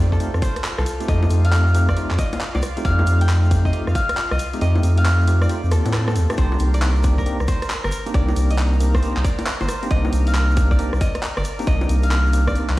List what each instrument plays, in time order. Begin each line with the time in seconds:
Already playing: sub bass F2, analog synth pad F4 F5, harp A4 C5 D5
0.00 tine electric piano A3 C4 D#4 F4 G4
0.12 harp A4, kick, shaker
0.20 tine electric piano A3 C4 D#4 F4 G4, closed hi-hat, shaker
0.34 sub bass F2, cross-stick, shaker
0.42 harp C5, kick, open hi-hat, shaker
0.56 cross-stick, closed hi-hat, shaker
0.64 clap, shaker
0.78 sub bass C2, harp A4, cross-stick, shaker
0.86 open hi-hat, shaker
1.00 tine electric piano A3 C4 D#4 F4 G4, closed hi-hat, shaker
1.08 sub bass F2, tine electric piano A3 C4 D#4 F4 G4, harp D#5, kick, closed hi-hat, shaker
1.22 high bongo, shaker
1.30 sub bass F2, open hi-hat, shaker
1.45 harp F5, closed hi-hat, shaker
1.53 clap, closed hi-hat, shaker
1.67 shaker
1.74 tine electric piano A3 C4 D#4 F4 G4, open hi-hat, shaker
1.89 harp D5, kick, cross-stick, shaker
1.97 tine electric piano A3 C4 D#4 F4 G4, closed hi-hat, shaker
2.10 sub bass F2, clap, shaker
2.19 harp D#5, kick, open hi-hat, shaker
2.33 closed hi-hat, high bongo, shaker
2.40 cross-stick, clap, shaker
2.55 sub bass C2, harp D5, high bongo, shaker
2.62 cross-stick, open hi-hat, shaker
2.77 tine electric piano A3 C4 D#4 F4 G4, closed hi-hat, shaker
2.85 sub bass F2, tine electric piano A3 C4 D#4 F4 G4, harp F5, kick, closed hi-hat, shaker
2.99 high bongo, shaker
3.07 sub bass F2, open hi-hat, shaker
3.21 harp G5, closed hi-hat, shaker
3.29 clap, closed hi-hat, shaker
3.44 shaker
3.51 tine electric piano A3 C4 D#4 F4 G4, kick, open hi-hat, shaker
3.65 harp D#5, kick, shaker
3.73 tine electric piano A3 C4 D#4 F4 G4, closed hi-hat, shaker
3.87 sub bass F2, cross-stick, shaker
3.95 harp F5, kick, open hi-hat, shaker
4.09 cross-stick, closed hi-hat, shaker
4.17 clap, shaker
4.31 sub bass C2, harp D#5, cross-stick, shaker
4.39 open hi-hat, shaker
4.53 tine electric piano A3 C4 D#4 F4 G4, closed hi-hat, shaker
4.61 sub bass F2, tine electric piano A3 C4 D#4 F4 G4, harp D#5, closed hi-hat, shaker
4.75 high bongo, shaker
4.83 sub bass F2, open hi-hat, shaker
4.97 harp F5, closed hi-hat, shaker
5.05 clap, closed hi-hat, shaker
5.20 shaker
5.27 tine electric piano A3 C4 D#4 F4 G4, open hi-hat, shaker
5.42 harp D5, cross-stick, shaker
5.49 tine electric piano A3 C4 D#4 F4 G4, closed hi-hat, swell, shaker
5.64 sub bass F2, shaker
5.72 sub bass D#2, harp A4, cross-stick, open hi-hat, shaker
5.86 sub bass A2, closed hi-hat, high bongo, shaker
5.94 cross-stick, clap, shaker
6.08 harp A4, cross-stick, high bongo, shaker
6.16 sub bass D#2, open hi-hat, shaker
6.30 tine electric piano A3 C4 D#4 F4 G4, cross-stick, closed hi-hat, shaker
6.38 sub bass C2, tine electric piano A#3 C4 D4 D#4 G4, analog synth pad A#4 A#5, harp C5, kick, closed hi-hat, shaker
6.52 high bongo, shaker
6.59 sub bass C2, open hi-hat, shaker
6.74 harp D5, closed hi-hat, shaker
6.82 clap, closed hi-hat
6.96 shaker
7.03 tine electric piano A#3 C4 D4 D#4 G4, kick, open hi-hat, shaker
7.18 harp A#4, kick, shaker
7.26 tine electric piano A#3 C4 D4 D#4 G4, closed hi-hat, shaker
7.40 sub bass C2, cross-stick, shaker
7.48 harp C5, kick, open hi-hat, shaker
7.62 cross-stick, closed hi-hat, shaker
7.70 clap, shaker
7.84 sub bass G1, harp A#4, cross-stick, shaker
7.92 open hi-hat, shaker
8.06 tine electric piano A#3 C4 D4 D#4 G4, closed hi-hat, shaker
8.14 sub bass C2, tine electric piano A#3 C4 D4 D#4 G4, harp D5, kick, closed hi-hat, shaker
8.28 high bongo, shaker
8.36 sub bass C2, open hi-hat, shaker
8.50 harp D#5, closed hi-hat, shaker
8.58 clap, closed hi-hat, shaker
8.72 shaker
8.80 tine electric piano A#3 C4 D4 D#4 G4, open hi-hat, shaker
8.95 harp C5, kick, cross-stick, shaker
9.03 tine electric piano A#3 C4 D4 D#4 G4, closed hi-hat, shaker
9.17 sub bass C2, clap, shaker
9.25 harp D5, kick, open hi-hat, shaker
9.39 closed hi-hat, high bongo, shaker
9.47 cross-stick, clap, shaker
9.61 sub bass G1, harp C5, high bongo, shaker
9.69 cross-stick, open hi-hat, shaker
9.83 tine electric piano A#3 C4 D4 D#4 G4, closed hi-hat, shaker
9.91 sub bass C2, tine electric piano A#3 C4 D4 D#4 G4, harp D#5, kick, closed hi-hat, shaker
10.05 high bongo, shaker
10.13 sub bass C2, open hi-hat, shaker
10.27 harp F5, closed hi-hat, shaker
10.35 clap, closed hi-hat, shaker
10.49 shaker
10.57 tine electric piano A#3 C4 D4 D#4 G4, kick, open hi-hat, shaker
10.71 harp D5, kick, shaker
10.79 tine electric piano A#3 C4 D4 D#4 G4, closed hi-hat, shaker
10.93 sub bass C2, cross-stick, shaker
11.01 harp D#5, kick, open hi-hat, shaker
11.14 cross-stick, closed hi-hat, shaker
11.23 clap, shaker
11.37 sub bass G1, harp D5, cross-stick, shaker
11.44 open hi-hat, shaker
11.59 tine electric piano A#3 C4 D4 D#4 G4, closed hi-hat, shaker
11.67 sub bass C2, tine electric piano A#3 C4 D4 D#4 G4, harp D#5, kick, closed hi-hat, shaker
11.81 high bongo, shaker
11.89 sub bass C2, open hi-hat, shaker
12.03 harp F5, closed hi-hat, shaker
12.11 clap, closed hi-hat, shaker
12.26 shaker
12.33 tine electric piano A#3 C4 D4 D#4 G4, open hi-hat, shaker
12.47 harp D5, kick, cross-stick, shaker
12.55 tine electric piano A#3 C4 D4 D#4 G4, closed hi-hat, shaker
12.69 sub bass C2, clap, shaker